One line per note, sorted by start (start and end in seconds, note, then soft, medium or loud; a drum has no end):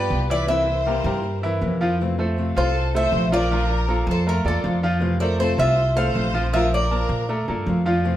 0.00 0.23 B3 medium
0.00 0.27 G4 medium
0.00 0.23 B4 medium
0.00 0.31 B4 loud
0.00 0.23 D5 medium
0.10 0.99 C2 medium
0.10 0.28 G3 medium
0.10 0.29 B3 medium
0.10 0.27 F4 medium
0.28 0.45 E3 medium
0.28 0.48 B3 soft
0.28 0.45 E4 medium
0.28 0.47 F4 soft
0.28 0.48 B4 medium
0.28 0.48 D5 loud
0.28 0.45 E5 medium
0.47 0.65 C3 medium
0.47 0.66 E3 medium
0.47 0.79 E3 medium
0.47 0.66 A#3 medium
0.47 0.66 C4 medium
0.47 0.65 E4 medium
0.47 0.80 E4 medium
0.47 1.58 C5 medium
0.47 1.58 E5 medium
0.47 0.80 E5 medium
0.66 0.85 A#3 soft
0.66 0.85 C4 soft
0.66 0.85 E4 soft
0.85 1.21 C3 medium
0.85 1.22 E3 medium
0.85 1.02 G3 medium
0.85 1.22 A#3 medium
0.85 1.22 C4 medium
0.85 1.22 E4 medium
0.85 1.02 G4 medium
0.85 1.02 A#4 medium
1.04 1.57 G2 loud
1.04 1.36 G3 medium
1.04 1.36 G4 medium
1.04 1.37 A#4 medium
1.23 muted steel-string acoustic guitar stroke medium
1.41 1.74 E3 medium
1.41 1.61 A#3 soft
1.41 1.61 C4 soft
1.41 1.60 E4 soft
1.41 1.74 E4 medium
1.41 1.74 E5 medium
1.61 2.50 F2 medium
1.61 1.79 C3 medium
1.61 1.79 E3 medium
1.61 1.80 A#3 medium
1.61 1.80 C4 medium
1.61 1.80 E4 medium
1.81 1.96 F3 medium
1.81 2.00 A#3 soft
1.81 1.99 C4 soft
1.81 1.99 E4 medium
1.81 1.96 F4 medium
1.81 1.96 F5 medium
2.00 2.18 C3 medium
2.00 2.18 E3 medium
2.00 2.18 A3 medium
2.00 2.18 C4 medium
2.00 2.17 F4 medium
2.18 2.49 A3 medium
2.18 2.37 A3 soft
2.18 2.37 C4 soft
2.18 2.36 F4 soft
2.18 2.50 A4 medium
2.18 2.50 C5 medium
2.37 2.74 C3 medium
2.37 2.74 A3 medium
2.37 2.74 C4 medium
2.37 2.75 F4 medium
2.56 3.09 C2 medium
2.56 2.87 F4 medium
2.56 2.91 A4 medium
2.56 2.92 C5 medium
2.56 2.88 F5 medium
2.75 muted steel-string acoustic guitar stroke medium
2.93 3.25 A3 medium
2.93 3.13 A3 soft
2.93 3.12 C4 soft
2.93 3.12 F4 medium
2.93 3.25 A4 medium
2.93 3.25 C5 medium
2.93 3.30 C5 loud
2.93 3.33 E5 loud
3.12 4.01 A#1 medium
3.12 3.31 C3 medium
3.12 3.31 E3 medium
3.12 3.31 A3 medium
3.12 3.31 C4 medium
3.12 3.30 F4 medium
3.31 3.47 F3 medium
3.31 3.49 A3 soft
3.31 3.50 C4 soft
3.31 3.50 F4 medium
3.31 3.47 F4 medium
3.31 4.04 A#4 medium
3.31 4.10 D5 loud
3.31 3.48 F5 medium
3.49 3.68 F3 medium
3.49 3.82 F3 medium
3.49 3.68 A3 medium
3.49 3.69 D4 medium
3.49 3.82 F4 medium
3.49 3.68 F4 medium
3.49 3.82 F5 medium
3.69 3.88 A3 soft
3.69 3.87 D4 soft
3.69 3.87 F4 soft
3.87 4.25 F3 medium
3.87 4.19 A#3 medium
3.87 4.25 D4 medium
3.87 4.25 F4 medium
3.87 4.19 A4 medium
3.87 4.20 A#4 medium
4.07 4.42 F2 loud
4.07 4.26 A4 medium
4.11 4.28 C5 medium
4.26 4.42 A3 medium
4.26 4.45 F4 medium
4.26 4.42 A4 medium
4.26 4.42 A#4 medium
4.26 4.45 A#4 medium
4.26 muted steel-string acoustic guitar stroke medium
4.45 4.62 E2 medium
4.45 4.63 A3 soft
4.45 4.76 A#3 medium
4.45 4.64 D4 soft
4.45 4.63 F4 soft
4.45 4.81 F4 medium
4.45 4.76 A4 medium
4.45 4.82 A4 medium
4.45 4.76 D5 medium
4.63 5.52 F2 medium
4.63 4.82 F3 medium
4.63 4.82 A3 medium
4.63 4.82 D4 medium
4.63 4.81 F4 medium
4.82 5.14 F3 medium
4.82 5.00 A3 soft
4.82 5.01 D4 medium
4.82 5.00 F4 medium
4.82 5.14 F4 medium
4.82 5.14 F5 medium
4.99 5.19 C3 medium
4.99 5.19 E3 medium
4.99 5.19 A3 medium
4.99 5.20 C4 medium
4.99 5.19 F4 medium
5.20 5.52 A3 medium
5.20 5.39 A3 soft
5.20 5.39 C4 soft
5.20 5.38 F4 soft
5.20 5.52 A4 medium
5.20 5.38 A#4 medium
5.20 5.52 C5 medium
5.20 5.40 D5 medium
5.39 5.76 C3 medium
5.39 5.77 A3 medium
5.39 5.77 C4 medium
5.39 5.77 F4 medium
5.39 5.57 A4 medium
5.39 5.59 C5 medium
5.58 6.11 C2 loud
5.58 5.90 F4 medium
5.58 5.93 C5 medium
5.58 5.90 E5 medium
5.58 5.94 E5 loud
5.77 muted steel-string acoustic guitar stroke medium
5.95 6.27 A3 medium
5.95 6.14 A3 soft
5.95 6.14 C4 soft
5.95 6.14 F4 medium
5.95 6.27 A4 medium
5.95 6.49 C5 loud
5.95 6.27 C5 medium
5.95 6.49 F5 loud
6.15 7.04 A#1 medium
6.15 6.33 C3 medium
6.15 6.33 E3 medium
6.15 6.33 A3 medium
6.15 6.34 C4 medium
6.15 6.33 F4 medium
6.34 6.49 F3 medium
6.34 6.52 A3 soft
6.34 6.53 C4 soft
6.34 6.52 F4 medium
6.34 6.50 F4 medium
6.34 6.50 F5 medium
6.52 6.71 F3 medium
6.52 6.84 F3 medium
6.52 6.71 A3 medium
6.52 6.72 D4 medium
6.52 6.84 F4 medium
6.52 6.71 F4 medium
6.52 6.71 A#4 medium
6.52 6.71 E5 loud
6.52 6.84 F5 medium
6.72 6.91 A3 soft
6.72 6.90 D4 soft
6.72 6.90 F4 soft
6.72 7.45 A#4 medium
6.72 7.44 D5 medium
6.90 7.27 F3 medium
6.90 7.22 A#3 medium
6.90 7.28 D4 medium
6.90 7.29 F4 medium
6.90 7.22 A#4 medium
6.90 7.22 A5 medium
7.09 7.44 A#2 medium
7.28 7.44 A3 medium
7.28 7.44 A4 medium
7.28 7.45 A#4 medium
7.28 muted steel-string acoustic guitar stroke medium
7.48 7.65 G2 medium
7.48 7.66 A3 soft
7.48 7.79 A#3 medium
7.48 7.66 D4 soft
7.48 7.66 F4 soft
7.48 7.79 A4 medium
7.48 7.79 A#4 medium
7.66 8.17 F2 medium
7.66 7.84 F3 medium
7.66 7.85 A3 medium
7.66 7.85 D4 medium
7.66 7.84 F4 medium
7.85 8.16 F3 medium
7.85 8.04 A3 soft
7.85 8.04 D4 soft
7.85 8.03 F4 soft
7.85 8.17 F4 medium
7.85 8.17 F5 medium
8.04 8.17 C3 medium
8.04 8.17 E3 medium
8.04 8.17 A3 medium
8.04 8.17 C4 medium
8.04 8.17 F4 medium